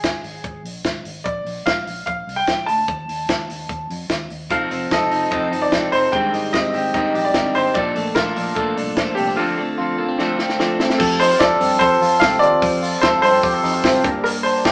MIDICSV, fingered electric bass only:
0, 0, Header, 1, 2, 480
1, 0, Start_track
1, 0, Tempo, 405954
1, 1483, Time_signature, 4, 2, 24, 8
1, 17404, End_track
2, 0, Start_track
2, 0, Title_t, "Fingered electric bass"
2, 0, Program_c, 0, 33
2, 47, Note_on_c, 0, 32, 85
2, 242, Note_off_c, 0, 32, 0
2, 273, Note_on_c, 0, 32, 83
2, 474, Note_off_c, 0, 32, 0
2, 522, Note_on_c, 0, 32, 94
2, 719, Note_off_c, 0, 32, 0
2, 748, Note_on_c, 0, 34, 86
2, 951, Note_off_c, 0, 34, 0
2, 1001, Note_on_c, 0, 32, 93
2, 1198, Note_off_c, 0, 32, 0
2, 1238, Note_on_c, 0, 32, 79
2, 1437, Note_off_c, 0, 32, 0
2, 1486, Note_on_c, 0, 34, 101
2, 1682, Note_off_c, 0, 34, 0
2, 1716, Note_on_c, 0, 34, 90
2, 1916, Note_off_c, 0, 34, 0
2, 1969, Note_on_c, 0, 34, 88
2, 2164, Note_off_c, 0, 34, 0
2, 2212, Note_on_c, 0, 34, 91
2, 2406, Note_off_c, 0, 34, 0
2, 2446, Note_on_c, 0, 34, 100
2, 2642, Note_off_c, 0, 34, 0
2, 2687, Note_on_c, 0, 36, 84
2, 2883, Note_off_c, 0, 36, 0
2, 2923, Note_on_c, 0, 34, 82
2, 3121, Note_off_c, 0, 34, 0
2, 3176, Note_on_c, 0, 38, 78
2, 3369, Note_off_c, 0, 38, 0
2, 3408, Note_on_c, 0, 39, 95
2, 3604, Note_off_c, 0, 39, 0
2, 3648, Note_on_c, 0, 39, 87
2, 3845, Note_off_c, 0, 39, 0
2, 3886, Note_on_c, 0, 39, 83
2, 4084, Note_off_c, 0, 39, 0
2, 4127, Note_on_c, 0, 39, 93
2, 4324, Note_off_c, 0, 39, 0
2, 4370, Note_on_c, 0, 39, 94
2, 4566, Note_off_c, 0, 39, 0
2, 4611, Note_on_c, 0, 41, 91
2, 4807, Note_off_c, 0, 41, 0
2, 4842, Note_on_c, 0, 39, 98
2, 5041, Note_off_c, 0, 39, 0
2, 5088, Note_on_c, 0, 39, 78
2, 5325, Note_on_c, 0, 29, 90
2, 5343, Note_off_c, 0, 39, 0
2, 5523, Note_off_c, 0, 29, 0
2, 5567, Note_on_c, 0, 29, 88
2, 5764, Note_off_c, 0, 29, 0
2, 5811, Note_on_c, 0, 29, 94
2, 6007, Note_off_c, 0, 29, 0
2, 6049, Note_on_c, 0, 29, 95
2, 6246, Note_off_c, 0, 29, 0
2, 6286, Note_on_c, 0, 29, 99
2, 6484, Note_off_c, 0, 29, 0
2, 6531, Note_on_c, 0, 31, 87
2, 6727, Note_off_c, 0, 31, 0
2, 6763, Note_on_c, 0, 29, 88
2, 6962, Note_off_c, 0, 29, 0
2, 7010, Note_on_c, 0, 29, 84
2, 7206, Note_off_c, 0, 29, 0
2, 7248, Note_on_c, 0, 32, 100
2, 7445, Note_off_c, 0, 32, 0
2, 7488, Note_on_c, 0, 32, 91
2, 7685, Note_off_c, 0, 32, 0
2, 7730, Note_on_c, 0, 32, 90
2, 7926, Note_off_c, 0, 32, 0
2, 7972, Note_on_c, 0, 32, 89
2, 8168, Note_off_c, 0, 32, 0
2, 8211, Note_on_c, 0, 32, 92
2, 8407, Note_off_c, 0, 32, 0
2, 8449, Note_on_c, 0, 34, 89
2, 8646, Note_off_c, 0, 34, 0
2, 8685, Note_on_c, 0, 32, 97
2, 8883, Note_off_c, 0, 32, 0
2, 8928, Note_on_c, 0, 32, 78
2, 9125, Note_off_c, 0, 32, 0
2, 9164, Note_on_c, 0, 34, 93
2, 9363, Note_off_c, 0, 34, 0
2, 9418, Note_on_c, 0, 34, 84
2, 9611, Note_off_c, 0, 34, 0
2, 9648, Note_on_c, 0, 34, 96
2, 9845, Note_off_c, 0, 34, 0
2, 9899, Note_on_c, 0, 34, 90
2, 10092, Note_off_c, 0, 34, 0
2, 10126, Note_on_c, 0, 34, 89
2, 10324, Note_off_c, 0, 34, 0
2, 10377, Note_on_c, 0, 36, 84
2, 10570, Note_off_c, 0, 36, 0
2, 10605, Note_on_c, 0, 34, 100
2, 10803, Note_off_c, 0, 34, 0
2, 10850, Note_on_c, 0, 36, 82
2, 11046, Note_off_c, 0, 36, 0
2, 13003, Note_on_c, 0, 41, 116
2, 13398, Note_off_c, 0, 41, 0
2, 13486, Note_on_c, 0, 41, 92
2, 13683, Note_off_c, 0, 41, 0
2, 13728, Note_on_c, 0, 43, 99
2, 13924, Note_off_c, 0, 43, 0
2, 13964, Note_on_c, 0, 41, 101
2, 14161, Note_off_c, 0, 41, 0
2, 14199, Note_on_c, 0, 41, 97
2, 14399, Note_off_c, 0, 41, 0
2, 14442, Note_on_c, 0, 36, 100
2, 14640, Note_off_c, 0, 36, 0
2, 14679, Note_on_c, 0, 39, 98
2, 14878, Note_off_c, 0, 39, 0
2, 14922, Note_on_c, 0, 41, 109
2, 15316, Note_off_c, 0, 41, 0
2, 15408, Note_on_c, 0, 41, 105
2, 15603, Note_off_c, 0, 41, 0
2, 15635, Note_on_c, 0, 43, 96
2, 15835, Note_off_c, 0, 43, 0
2, 15886, Note_on_c, 0, 41, 110
2, 16081, Note_off_c, 0, 41, 0
2, 16122, Note_on_c, 0, 41, 100
2, 16319, Note_off_c, 0, 41, 0
2, 16364, Note_on_c, 0, 36, 91
2, 16560, Note_off_c, 0, 36, 0
2, 16607, Note_on_c, 0, 31, 98
2, 17194, Note_off_c, 0, 31, 0
2, 17325, Note_on_c, 0, 31, 101
2, 17404, Note_off_c, 0, 31, 0
2, 17404, End_track
0, 0, End_of_file